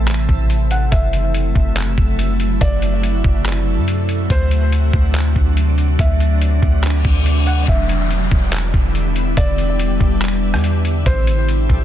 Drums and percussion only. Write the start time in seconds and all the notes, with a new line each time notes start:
0.07 clap, closed hi-hat
0.29 kick
0.50 closed hi-hat
0.71 closed hi-hat
0.92 kick, closed hi-hat
1.13 closed hi-hat
1.34 closed hi-hat
1.55 kick
1.76 clap, closed hi-hat
1.98 kick
2.19 closed hi-hat
2.40 closed hi-hat
2.61 kick, closed hi-hat
2.82 closed hi-hat
3.03 closed hi-hat
3.24 kick
3.45 clap, closed hi-hat
3.88 closed hi-hat
4.09 closed hi-hat
4.30 kick, closed hi-hat
4.51 closed hi-hat
4.72 closed hi-hat
4.93 kick
5.15 clap, closed hi-hat
5.36 kick
5.57 closed hi-hat
5.78 closed hi-hat
5.99 kick, closed hi-hat
6.20 closed hi-hat
6.42 closed hi-hat
6.62 kick
6.84 clap, closed hi-hat
7.05 kick
7.26 closed hi-hat
7.47 closed hi-hat
7.68 kick, closed hi-hat
7.89 closed hi-hat
8.11 closed hi-hat
8.31 kick
8.53 clap, closed hi-hat
8.74 kick
8.95 closed hi-hat
9.16 closed hi-hat
9.37 kick, closed hi-hat
9.58 closed hi-hat
9.79 closed hi-hat
10.00 kick
10.21 clap, closed hi-hat
10.54 cross-stick
10.64 closed hi-hat
10.85 closed hi-hat
11.06 kick, closed hi-hat
11.27 closed hi-hat
11.48 closed hi-hat
11.69 kick